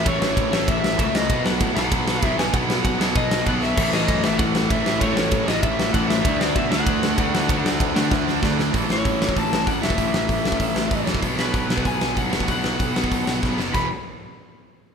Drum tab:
CC |----------------|----------------|----------------|x---------------|
RD |x---x---x---x---|x---x---x---x---|x---x---x---x---|----x---x---x---|
HH |----------------|----------------|----------------|----------------|
SD |--o---o---o---o-|--o---o---o---o-|--o---o---o---o-|--o---o---o---o-|
BD |o---o---o---o---|o---o---o---o---|o---o---o---o---|o---o---o---o---|

CC |----------------|----------------|----------------|----------------|
RD |x---x---x---x---|x---x---x---x---|x---x-----------|----------------|
HH |----------------|----------------|----------------|o---o---o---o---|
SD |--o---o---o---o-|--o---o---o---o-|--o---o-o-o-o-o-|--o---o---o---o-|
BD |o---o---o---o---|o---o---o---o---|o---o---o---o---|o---o--oo---o--o|

CC |----------------|----------------|----------------|x---------------|
RD |----------------|----------------|----------------|----------------|
HH |o---o---o---o---|o---o---o---o---|o---o---o-------|----------------|
SD |--o---o---o---o-|--o---o---o---o-|--o---o---o-o-o-|----------------|
BD |o---o--oo---o--o|o---o--oo---o--o|o---o--oo---o---|o---------------|